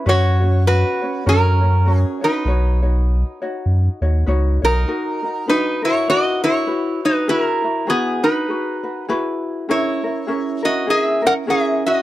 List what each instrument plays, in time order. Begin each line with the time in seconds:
0.06 sub bass F#2, ukulele C#4 F#4 B4 C#5, resonator guitar played with a steel bar F#4 C#5
0.41 ukulele C#4 F#4 C#5
0.67 resonator guitar played with a steel bar F#4 B4
1.01 ukulele C#4 F#4 C#5
1.26 sub bass F#2, ukulele C#4 F#4 A#4 C#5, resonator guitar played with a steel bar C#4 A#4
1.61 ukulele C#4 F#4 C#5
1.86 ukulele C#4 F#4 A#4 C#5
1.98 resonator guitar played with a steel bar G#4
2.21 ukulele C#4 F#4 C#5, resonator guitar played with a steel bar D#4 B4
2.45 sub bass B1, ukulele D#4 F#4 B4 C#5
2.82 ukulele D#4 F#4 C#5
3.42 ukulele D#4 F#4 C#5
3.66 sub bass F#2
4.01 sub bass D#2, ukulele D#4 F#4 C#5
4.26 sub bass C#2, ukulele D#4 F#4 B4 C#5
4.62 sub bass B1, ukulele D#4 F#4 C#5, resonator guitar played with a steel bar D#4 A#4
4.88 ukulele D#4 F#4 A#4
5.23 ukulele D#4 F#4 A#4
5.48 ukulele D#4 F#4 B4, resonator guitar played with a steel bar D#4 B4
5.82 resonator guitar played with a steel bar E4 C#5, ukulele F#4 A#4
6.08 ukulele D#4 F#4 A#4 B4, resonator guitar played with a steel bar F#4 D#5
6.44 resonator guitar played with a steel bar E4 C#5, ukulele F#4 A#4
6.67 ukulele F#4 B4
7.05 resonator guitar played with a steel bar D#4 B4
7.28 ukulele E4 F#4 G#4, resonator guitar played with a steel bar E4 B4
7.40 resonator guitar played with a steel bar A#4
7.64 ukulele E4 F#4
7.87 resonator guitar played with a steel bar B3 G#4, ukulele E4 F#4 G#4 B4
8.23 resonator guitar played with a steel bar D#4 B4, ukulele F#4 B4
8.48 ukulele F#4 G#4 B4
8.83 ukulele F#4 B4
9.09 ukulele E4 F#4 G#4 B4
9.69 ukulele C#4 E4 G#4 A#4, resonator guitar played with a steel bar E4 C#5
10.04 ukulele C#4 E4 A#4
10.27 ukulele C#4 E4 G#4 A#4
10.63 ukulele C#4 E4 A#4, resonator guitar played with a steel bar F#4 D#5
10.87 ukulele C#4 E4 G#4 A#4, resonator guitar played with a steel bar G#4 E5
11.22 ukulele C#4 E4 A#4
11.26 resonator guitar played with a steel bar A#4 F#5
11.47 ukulele C#4 E4 G#4 A#4, resonator guitar played with a steel bar G#4 E5
11.86 resonator guitar played with a steel bar F#4 D#5